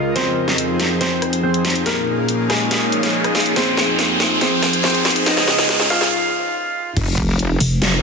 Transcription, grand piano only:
0.16 0.92 C4 medium
0.16 0.92 C5 medium
1.01 1.36 C4 medium
1.01 1.36 C5 medium
1.43 1.79 C4 medium
1.43 1.79 C5 medium
1.86 2.41 A#3 medium
1.86 2.41 A#4 medium
2.50 3.48 G#3 medium
2.50 3.48 G#4 medium
3.56 4.33 C4 medium
3.56 4.33 C5 medium
4.41 4.77 C4 medium
4.41 4.77 C5 medium
4.84 5.19 C4 medium
4.84 5.19 C5 medium
5.26 5.82 D#4 medium
5.26 5.82 D#5 medium
5.90 6.88 F4 medium
5.90 6.88 F5 medium

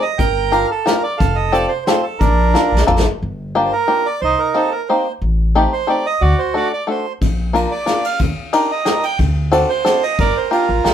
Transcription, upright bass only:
0.19 0.63 G1 medium
1.20 1.64 F1 loud
2.21 2.54 A#1 medium
2.72 2.87 A#1 medium
2.88 3.04 A1 medium
3.06 3.20 G1 medium
3.23 3.66 G1 medium
4.22 4.33 C2 medium
5.22 5.65 A1 medium
6.21 6.33 D2 medium
7.21 7.64 A#1 medium
8.20 8.31 D#2 medium
9.19 9.62 D2 medium
10.19 10.30 G1 medium
10.69 10.83 A1 medium
10.85 10.94 A#1 medium

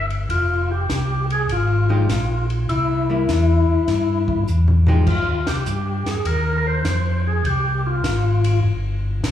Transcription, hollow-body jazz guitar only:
1.89 2.06 F3 medium
1.89 2.07 G#3 medium
1.89 2.07 D#4 medium
1.89 2.07 G4 medium
3.10 3.26 G3 medium
3.10 3.27 A#3 medium
3.10 3.27 E4 medium
4.88 5.05 F3 medium
4.88 5.05 G#3 medium
4.88 5.05 D#4 medium
4.88 5.05 G4 medium

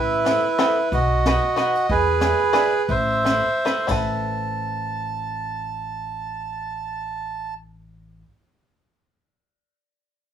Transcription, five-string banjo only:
0.25 0.43 B3 medium
0.25 0.44 C4 soft
0.25 0.44 E4 soft
0.25 0.44 A4 medium
0.58 0.77 B3 medium
0.58 0.77 C4 medium
0.58 0.77 E4 medium
0.58 0.77 A4 medium
1.26 1.43 B3 medium
1.26 1.43 D#4 soft
1.26 1.43 F#4 medium
1.26 1.43 B4 medium
1.56 1.75 B3 medium
1.56 1.75 D#4 medium
1.56 1.74 F#4 medium
1.56 1.75 B4 medium
2.21 2.39 D4 medium
2.21 2.39 E4 soft
2.21 2.39 G#4 soft
2.21 2.39 B4 medium
2.53 2.72 D4 medium
2.53 2.72 E4 medium
2.53 2.73 G#4 medium
2.53 2.73 B4 medium
3.25 3.47 C4 soft
3.25 3.47 E4 medium
3.25 3.47 A4 soft
3.25 3.47 B4 medium
3.65 3.86 C4 medium
3.65 3.87 E4 medium
3.65 3.89 A4 medium
3.65 3.90 B4 medium
3.87 8.22 C4 medium
3.87 8.22 E4 medium
3.87 8.23 A4 medium
3.91 8.24 B4 medium

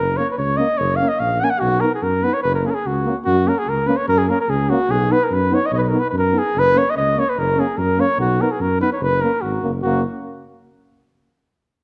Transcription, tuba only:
0.00 0.20 F#1 medium
0.38 0.61 C#2 medium
0.79 1.01 F#1 loud
1.20 1.42 A#1 medium
1.62 1.84 B1 loud
2.02 2.25 F#2 medium
2.44 2.66 F#1 loud
2.86 3.08 C#2 medium
3.27 3.49 F#2 loud
3.67 3.90 C#2 medium
4.08 4.31 F#2 loud
4.48 4.71 C#2 medium
4.89 5.12 B1 loud
5.31 5.54 F#2 loud
5.72 5.94 B1 loud
6.13 6.36 F#2 medium
6.55 6.77 F#1 medium
6.96 7.19 C#2 medium
7.38 7.60 F#1 medium
7.78 8.01 F#2 loud
8.19 8.41 B1 loud
8.60 8.83 F#2 medium
9.00 9.23 F#1 loud
9.43 9.61 G#1 medium
9.64 9.82 F#1 medium
9.84 10.03 F#1 loud

